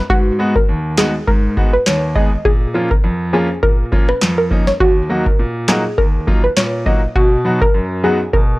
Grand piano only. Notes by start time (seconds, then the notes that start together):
0.10 G#2
0.39 G#3 B3 D#4 F#4
0.69 D#2
0.98 G#3 B3 D#4 F#4
1.28 G#2
1.57 G#3 B3 D#4 F#4
1.86 D#2
2.15 G#3 B3 D#4 G#4
2.45 A#2
2.74 F3 A#3 C#4 F4
3.04 F2
3.33 F3 A#3 C#4 F4
3.63 A#2
3.92 F3 A#3 C#4 F4
4.22 F2
4.51 F3 A#3 C#4 D#4
4.80 D#2
5.09 F#3 A#3 D#4 F#4
5.39 A#2
5.68 F#3 A#3 D#4 F#4
5.98 D#2
6.27 F#3 A#3 D#4 F4
6.57 A#2
6.86 F#3 A#3 D#4 F#4
7.16 B2
7.45 F#3 B3 D#4 F#4
7.74 F#2
8.04 F#3 B3 D#4 F#4
8.33 B2